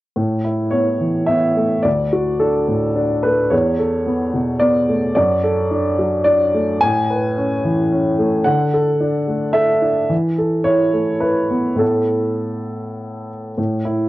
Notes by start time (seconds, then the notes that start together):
0.16 A2
0.45 E4
0.71 B3 C#5
1.01 E3
1.26 B3 E5
1.57 A3
1.83 D2 D5
2.13 F#4
2.39 D4 A4
2.68 A2
2.96 D4
3.23 A3 B4
3.50 E2 C#5
3.79 A4
4.06 B3
4.33 B2
4.59 B3 D5
4.89 A3
5.15 F#2 D5
5.43 A4
5.71 D4
5.99 F#3
6.24 D4 D5
6.54 A3
6.81 A2 G#5
7.10 B4
7.38 C#4
7.65 E3
7.92 C#4
8.19 A3
8.44 D3 F#5
8.74 A4
9.01 D4
9.28 A3
9.53 A4 E5
9.82 D4
10.09 E3
10.38 A4
10.64 E4 C#5
10.93 A3
11.20 E4 B4
11.51 B3
11.75 A2 A3 B3 E4 A4
13.58 A2
13.85 E4